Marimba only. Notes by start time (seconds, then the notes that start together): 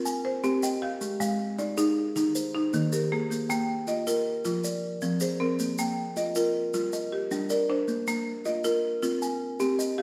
0.25 C5
0.44 C4
0.63 G5
0.82 G4 F5
1.20 G#3
1.59 D5
1.78 D#4
2.16 D#4
2.55 D#4
2.74 D#3
2.93 A#4
3.12 A#3 G#4
3.50 A#3
3.88 D#5
4.07 F4
4.45 F4
5.02 F3
5.21 C5
5.40 C4 A#4
5.79 A#3
6.17 D#5
6.36 F4
6.74 F4
7.12 G4
7.31 G3
7.50 D5
7.69 D4 C5
8.08 A#3
8.45 D#5
8.64 F4
9.03 F4
9.60 C4
9.98 G4 F5